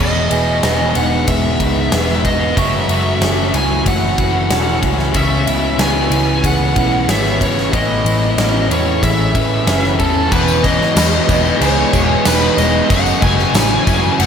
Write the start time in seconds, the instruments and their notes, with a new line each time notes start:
Already playing: overdriven electric guitar E2, ambient pad G#3 B4
0.00 picked electric bass E1, clean electric guitar E2, overdriven electric guitar B2, distorted electric guitar E3, lead electric guitar D#5
0.30 picked electric bass E1, distorted electric guitar B3, clean electric guitar G#4, ride
0.63 picked electric bass E1, clean electric guitar B3, distorted electric guitar G#4, snare, ride
0.95 picked electric bass E1, clean electric guitar D#3, distorted electric guitar D#4, lead electric guitar F#5, ride
1.28 picked electric bass E1, clean electric guitar G#3, distorted electric guitar G#3, lead electric guitar E5, kick, ride
1.60 picked electric bass C#2, clean electric guitar D#3, distorted electric guitar D#4, kick, ride
1.91 picked electric bass E1, clean electric guitar B3, distorted electric guitar G#4, snare, ride
2.09 snare
2.25 clean electric guitar D#3, distorted electric guitar D#4, lead electric guitar D#5, kick, ride
2.55 picked electric bass F#1, overdriven electric guitar F#2 C#3 F#3, clean electric guitar F#2, distorted electric guitar F#2, ambient pad A3 F#4 E5, lead electric guitar E5, kick, ride
2.89 picked electric bass F#1, distorted electric guitar A3, clean electric guitar F#4, ride
3.21 picked electric bass F#1, clean electric guitar C#4, distorted electric guitar A4, snare, ride
3.53 picked electric bass C#2, clean electric guitar E3, distorted electric guitar C#4, lead electric guitar G#5, ride
3.85 picked electric bass F#1, distorted electric guitar E3, clean electric guitar A3, lead electric guitar F#5, kick, ride
4.18 picked electric bass F#1, clean electric guitar E3, distorted electric guitar C#4, kick, ride
4.50 picked electric bass E1, clean electric guitar C#4, distorted electric guitar A4, snare, ride
4.82 picked electric bass C#2, clean electric guitar E3, distorted electric guitar C#4, kick, ride
4.99 snare
5.13 picked electric bass C#2, overdriven electric guitar C#3 G#3 C#4, clean electric guitar C#3, distorted electric guitar C#3, ambient pad B3 E4 C#5, lead electric guitar E5, kick, ride
5.46 picked electric bass C#2, distorted electric guitar B3, clean electric guitar E4, ride
5.79 picked electric bass C#2, clean electric guitar B3, distorted electric guitar G#4, lead electric guitar G#5, snare, ride
6.10 picked electric bass C#2, clean electric guitar E3, distorted electric guitar C#4, ride
6.43 picked electric bass C#2, distorted electric guitar E3, clean electric guitar G#3, lead electric guitar F#5, kick, ride
6.76 picked electric bass B1, clean electric guitar E3, distorted electric guitar C#4, kick, ride
7.07 picked electric bass G#1, clean electric guitar B3, distorted electric guitar G#4, lead electric guitar E5, snare, ride
7.25 snare
7.41 clean electric guitar E3, distorted electric guitar C#4, lead electric guitar C#5, kick, ride
7.58 snare
7.72 picked electric bass A1, overdriven electric guitar A2 E3, clean electric guitar A2, distorted electric guitar A2, ambient pad C#4 G#5, lead electric guitar D#5, kick, ride
8.05 picked electric bass A1, distorted electric guitar G#3, clean electric guitar E4, ride
8.37 picked electric bass A1, clean electric guitar C#4, distorted electric guitar E4, snare, ride
8.70 picked electric bass E2, clean electric guitar E3, distorted electric guitar C#4, lead electric guitar C#5, ride
9.02 picked electric bass A1, distorted electric guitar E3, clean electric guitar G#3, lead electric guitar E5, kick, ride
9.34 picked electric bass A1, clean electric guitar E3, distorted electric guitar C#4, kick, ride
9.66 picked electric bass F#1, clean electric guitar C#4, distorted electric guitar E4, snare, ride
9.84 snare
9.99 picked electric bass E2, clean electric guitar E3, distorted electric guitar C#4, lead electric guitar A4, kick, ride
10.31 picked electric bass E1, overdriven electric guitar E2 B2 E3, clean electric guitar E2, distorted electric guitar E3, ambient pad G#3 D#5, lead electric guitar B4, kick, tambourine, crash
10.48 tambourine
10.63 overdriven electric guitar E2 B2 E3, distorted electric guitar E3, lead electric guitar D#5, kick, crash
10.81 snare
10.96 overdriven electric guitar E2 B2 E3, picked electric bass E2, distorted electric guitar G#3, snare, tambourine, crash
11.28 picked electric bass E1, overdriven electric guitar E2 B2 E3, clean electric guitar B3, distorted electric guitar D#4, kick, tambourine, crash
11.46 tambourine
11.60 picked electric bass C#2, overdriven electric guitar E2 B2 E3, distorted electric guitar B3, clean electric guitar G#4, lead electric guitar C#5, crash
11.93 picked electric bass E1, overdriven electric guitar E2 B2 E3, clean electric guitar G#3, distorted electric guitar G#3, kick, tambourine, crash
12.25 picked electric bass E1, overdriven electric guitar E2 B2 E3, clean electric guitar D#3, distorted electric guitar B3, lead electric guitar B4, snare, tambourine, crash
12.56 picked electric bass E1, overdriven electric guitar E2 B2 E3, clean electric guitar G#3, distorted electric guitar G#3, lead electric guitar D#5, tambourine, crash
12.89 picked electric bass F#1, clean electric guitar F#2, overdriven electric guitar F#2 C#3 F#3, distorted electric guitar F#2, ambient pad A3 F#4 E5, lead electric guitar F#5, kick, tambourine, crash
13.06 tambourine
13.22 picked electric bass F#1, overdriven electric guitar F#2 C#3 F#3, distorted electric guitar C#3, lead electric guitar G#5, kick, crash
13.39 snare
13.54 picked electric bass A1, overdriven electric guitar F#2 C#3 F#3, clean electric guitar E3, distorted electric guitar E3, snare, tambourine, crash
13.70 tambourine
13.87 overdriven electric guitar F#2 C#3 F#3, picked electric bass F#2, clean electric guitar C#4, distorted electric guitar E4, kick, tambourine, crash
14.03 tambourine
14.19 picked electric bass F#1, overdriven electric guitar F#2 C#3 F#3, distorted electric guitar A3, clean electric guitar F#4, lead electric guitar F#5, crash